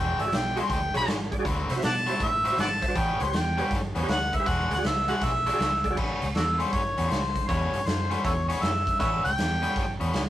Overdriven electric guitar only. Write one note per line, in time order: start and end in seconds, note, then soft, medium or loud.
0.00 0.23 E3 medium
0.00 0.23 G#3 medium
0.00 0.23 D4 medium
0.00 0.23 F#4 medium
0.57 0.78 E3 medium
0.57 0.78 G#3 medium
0.57 0.77 D4 loud
0.57 0.77 F#4 medium
0.94 1.15 E3 medium
0.94 1.15 G#3 medium
0.94 1.15 D4 medium
0.94 1.15 F#4 medium
1.45 1.74 D3 medium
1.45 1.74 C4 medium
1.45 1.74 E4 medium
1.45 1.74 F#4 medium
2.07 2.28 D3 medium
2.07 2.28 C4 medium
2.07 2.28 E4 medium
2.07 2.28 F#4 loud
2.45 2.66 D3 medium
2.45 2.66 C4 medium
2.45 2.65 E4 medium
2.45 2.65 F#4 medium
2.95 3.24 A2 medium
2.95 3.24 G3 medium
2.95 3.25 B3 medium
2.95 3.25 C#4 loud
3.58 3.79 A2 medium
3.58 3.79 G3 medium
3.58 3.79 B3 medium
3.58 3.78 C#4 medium
3.95 4.17 A2 medium
3.95 4.16 G3 medium
3.95 4.16 B3 medium
3.95 4.16 C#4 medium
4.46 4.75 E3 medium
4.46 4.75 G#3 medium
4.46 4.75 D4 medium
4.46 4.75 F#4 medium
5.09 5.30 E3 medium
5.09 5.30 G#3 medium
5.09 5.30 D4 loud
5.09 5.29 F#4 loud
5.47 5.68 E3 medium
5.47 5.68 G#3 medium
5.47 5.67 D4 medium
5.47 5.67 F#4 loud
5.97 6.26 A2 medium
5.97 6.26 G3 medium
5.97 6.26 B3 medium
5.97 6.26 C#4 medium
6.60 6.81 A2 medium
6.60 6.81 G3 medium
6.60 6.81 B3 medium
6.60 6.80 C#4 medium
6.98 7.19 A2 medium
6.98 7.19 G3 medium
6.98 7.19 B3 medium
6.98 7.18 C#4 medium
7.49 7.77 A2 medium
7.49 7.78 G3 medium
7.49 7.78 B3 medium
7.49 7.78 C#4 loud
8.10 8.32 A2 medium
8.10 8.32 G3 medium
8.10 8.32 B3 medium
8.10 8.32 C#4 loud
8.49 8.70 A2 medium
8.49 8.70 G3 medium
8.49 8.70 B3 medium
8.49 8.70 C#4 medium
9.00 9.28 A2 medium
9.00 9.29 G3 medium
9.00 9.29 B3 medium
9.00 9.29 C#4 medium
9.62 9.84 A2 medium
9.62 9.84 G3 medium
9.62 9.83 B3 medium
9.62 9.83 C#4 loud
10.00 10.22 A2 medium
10.00 10.21 G3 medium
10.00 10.21 B3 medium
10.00 10.21 C#4 medium